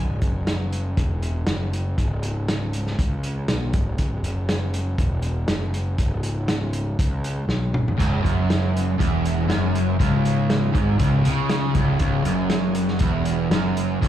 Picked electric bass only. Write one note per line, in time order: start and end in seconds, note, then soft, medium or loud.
0.00 0.21 C#1 medium
0.22 0.93 F#1 medium
0.98 1.44 E1 medium
1.47 1.94 F#1 medium
1.98 2.94 C#1 medium
2.99 3.45 C#2 medium
3.48 3.71 B1 medium
3.74 3.97 C#1 medium
3.98 4.21 C#1 medium
4.23 4.94 F#1 medium
4.99 5.45 E1 medium
5.48 5.95 F#1 loud
5.98 6.95 C#1 medium
6.99 7.45 C#2 medium
7.48 7.71 B1 medium
7.74 7.97 C#1 medium
8.00 8.23 C#1 medium
8.24 8.95 F#1 medium
9.00 9.46 E1 medium
9.49 9.96 F#1 medium
10.01 10.71 C#1 medium
10.75 10.98 G#1 medium
11.00 11.23 C#1 medium
11.25 11.72 C#2 medium
11.75 11.99 C#1 medium
12.01 12.24 C#1 medium
12.24 12.96 F#1 medium
13.00 13.48 E1 medium
13.50 13.98 F#1 loud
14.02 14.08 C#1 medium